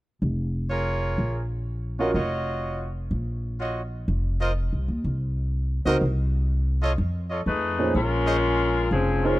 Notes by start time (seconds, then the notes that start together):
0.22 F1
0.70 F4 G#4 A#4 C#5
1.18 A#1
1.99 C#4 F4 F#4 A#4 C#5 D#5
2.14 F1 F4 F#4 C#5 D#5
3.11 A#1
3.60 F4 F#4 C#5 D#5
4.08 F1
4.40 F4 A#4 C5 D#5
4.73 C2
4.88 D#2
5.04 C2
5.85 C#2 C4 D#4 F#4 A#4 C5 D#5
6.01 C2
6.82 F4 A4 C#5 D#5
6.98 F2
7.30 F4 A4 C#5 D#5
7.46 F2 A3 D#4 G#4 B4
7.79 A#2 C#4 D#4 G#4 C5
7.95 A#1 G#3 C#4 F4 A#4
8.27 G#4 C5 C#5 D#5
8.91 F1 F3 C4 C#4 G#4
9.24 G#3 C#4 D#4 F4 G#4 A#4 C5